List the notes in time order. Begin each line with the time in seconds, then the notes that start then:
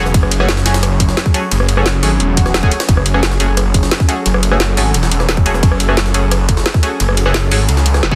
Already playing: E1 F#3 C#4 G#4 C#5
0.06 cross-stick, snare
0.14 F#1, kick, closed hi-hat, ride
0.23 cross-stick
0.31 closed hi-hat, ride
0.40 A3 C#4 F#4 G#4, cross-stick
0.49 snare, closed hi-hat, ride
0.57 snare
0.66 F#1 A3 C#4 F#4 G#4, snare, closed hi-hat, ride
0.74 snare, ride
0.83 cross-stick, closed hi-hat, ride
1.00 kick, closed hi-hat, ride
1.09 snare
1.17 snare, closed hi-hat, ride
1.26 kick, snare
1.34 A3 C#4 F#4 G#4, closed hi-hat, ride
1.51 F#1, closed hi-hat, ride
1.60 cross-stick
1.69 closed hi-hat, ride
1.77 A3 C#4 F#4 G#4, cross-stick
1.86 snare, closed hi-hat, ride
2.03 G#1 A3 C#4 F#4 G#4, open hi-hat, ride
2.20 E1, closed hi-hat, swell
2.37 kick, closed hi-hat, ride
2.46 cross-stick, snare
2.54 snare, closed hi-hat, ride
2.63 A3 C#4 F#4 G#4, kick, ride
2.71 closed hi-hat, ride
2.80 cross-stick, snare, ride
2.89 F#1 A4, kick, closed hi-hat, ride
2.97 cross-stick
3.06 closed hi-hat, ride
3.14 A3 C#4 F#4 G#4, cross-stick
3.23 snare, closed hi-hat, ride
3.31 snare
3.40 F#1 A3 C#4 F#4 G#4, closed hi-hat, ride
3.57 cross-stick, closed hi-hat, ride
3.74 kick, closed hi-hat, ride
3.83 snare
3.91 snare, closed hi-hat, ride
4.00 kick, snare
4.09 A3 C#4 F#4 G#4, closed hi-hat, ride
4.26 F#1, closed hi-hat, ride
4.34 cross-stick
4.43 closed hi-hat, ride
4.51 A3 C#4 F#4 G#4, cross-stick
4.60 snare, closed hi-hat, ride
4.77 G#1 A3 C#4 F#4 G#4, open hi-hat, ride
4.94 E1, closed hi-hat, ride
5.03 snare
5.11 E1, closed hi-hat, ride
5.20 cross-stick, snare
5.29 snare, closed hi-hat, ride
5.37 kick, ride
5.46 A3 C#4 F#4 G#4, closed hi-hat, ride
5.54 cross-stick, snare
5.63 F#1, kick, closed hi-hat, ride
5.72 cross-stick
5.80 closed hi-hat, ride
5.89 A3 C#4 F#4 G#4, cross-stick
5.97 snare, closed hi-hat, ride
6.06 snare
6.14 F#1 A3 C#4 F#4 G#4, closed hi-hat, ride
6.31 cross-stick, closed hi-hat, ride
6.49 kick, closed hi-hat, ride
6.57 snare
6.66 snare, closed hi-hat, ride
6.74 kick, snare
6.83 A3 C#4 F#4 G#4, closed hi-hat, ride
7.00 F#1, closed hi-hat, ride
7.09 cross-stick
7.17 closed hi-hat, ride
7.26 A3 C#4 F#4 G#4, cross-stick
7.34 snare, closed hi-hat, ride
7.51 G#1 A3 C#4 F#4 G#4, open hi-hat, ride
7.69 C#2, closed hi-hat, ride
7.77 snare
7.86 closed hi-hat, ride
7.94 cross-stick, snare
8.03 F#1, snare, closed hi-hat
8.11 A3 C#4 F#4 G#4, kick